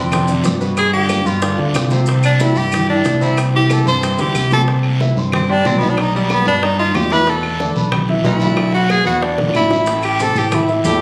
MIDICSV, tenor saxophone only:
0, 0, Header, 1, 2, 480
1, 0, Start_track
1, 0, Key_signature, 0, "major"
1, 0, Tempo, 325027
1, 1142, Time_signature, 4, 2, 24, 8
1, 16267, End_track
2, 0, Start_track
2, 0, Title_t, "Tenor saxophone"
2, 0, Program_c, 0, 66
2, 0, Note_on_c, 0, 60, 75
2, 432, Note_off_c, 0, 60, 0
2, 1160, Note_on_c, 0, 68, 94
2, 1369, Note_off_c, 0, 68, 0
2, 1377, Note_on_c, 0, 67, 86
2, 1865, Note_on_c, 0, 65, 82
2, 1887, Note_off_c, 0, 67, 0
2, 2343, Note_off_c, 0, 65, 0
2, 3324, Note_on_c, 0, 62, 90
2, 3561, Note_on_c, 0, 64, 93
2, 3583, Note_off_c, 0, 62, 0
2, 3797, Note_on_c, 0, 67, 108
2, 3819, Note_off_c, 0, 64, 0
2, 4270, Note_off_c, 0, 67, 0
2, 4279, Note_on_c, 0, 62, 91
2, 4772, Note_on_c, 0, 64, 83
2, 4794, Note_off_c, 0, 62, 0
2, 4997, Note_off_c, 0, 64, 0
2, 5257, Note_on_c, 0, 67, 93
2, 5509, Note_on_c, 0, 69, 87
2, 5531, Note_off_c, 0, 67, 0
2, 5718, Note_off_c, 0, 69, 0
2, 5727, Note_on_c, 0, 72, 102
2, 6214, Note_on_c, 0, 67, 95
2, 6236, Note_off_c, 0, 72, 0
2, 6679, Note_off_c, 0, 67, 0
2, 6692, Note_on_c, 0, 69, 109
2, 6828, Note_off_c, 0, 69, 0
2, 7897, Note_on_c, 0, 60, 83
2, 8130, Note_on_c, 0, 62, 102
2, 8152, Note_off_c, 0, 60, 0
2, 8367, Note_on_c, 0, 60, 86
2, 8390, Note_off_c, 0, 62, 0
2, 8541, Note_on_c, 0, 59, 90
2, 8563, Note_off_c, 0, 60, 0
2, 8705, Note_on_c, 0, 62, 85
2, 8727, Note_off_c, 0, 59, 0
2, 8873, Note_on_c, 0, 63, 97
2, 8895, Note_off_c, 0, 62, 0
2, 9084, Note_off_c, 0, 63, 0
2, 9093, Note_on_c, 0, 55, 80
2, 9330, Note_on_c, 0, 59, 91
2, 9352, Note_off_c, 0, 55, 0
2, 9557, Note_off_c, 0, 59, 0
2, 9564, Note_on_c, 0, 62, 94
2, 9795, Note_on_c, 0, 63, 84
2, 9817, Note_off_c, 0, 62, 0
2, 10019, Note_off_c, 0, 63, 0
2, 10028, Note_on_c, 0, 65, 93
2, 10263, Note_on_c, 0, 67, 99
2, 10285, Note_off_c, 0, 65, 0
2, 10520, Note_on_c, 0, 71, 119
2, 10542, Note_off_c, 0, 67, 0
2, 10773, Note_on_c, 0, 69, 96
2, 10796, Note_off_c, 0, 71, 0
2, 11479, Note_off_c, 0, 69, 0
2, 12198, Note_on_c, 0, 64, 82
2, 12861, Note_off_c, 0, 64, 0
2, 12909, Note_on_c, 0, 66, 97
2, 13157, Note_on_c, 0, 68, 111
2, 13180, Note_off_c, 0, 66, 0
2, 13379, Note_off_c, 0, 68, 0
2, 13388, Note_on_c, 0, 66, 87
2, 13622, Note_on_c, 0, 62, 78
2, 13644, Note_off_c, 0, 66, 0
2, 13862, Note_off_c, 0, 62, 0
2, 14117, Note_on_c, 0, 64, 87
2, 14779, Note_off_c, 0, 64, 0
2, 14836, Note_on_c, 0, 67, 93
2, 15090, Note_on_c, 0, 69, 105
2, 15112, Note_off_c, 0, 67, 0
2, 15333, Note_on_c, 0, 67, 94
2, 15355, Note_off_c, 0, 69, 0
2, 15570, Note_on_c, 0, 64, 72
2, 15593, Note_off_c, 0, 67, 0
2, 15796, Note_off_c, 0, 64, 0
2, 16022, Note_on_c, 0, 67, 81
2, 16267, Note_off_c, 0, 67, 0
2, 16267, End_track
0, 0, End_of_file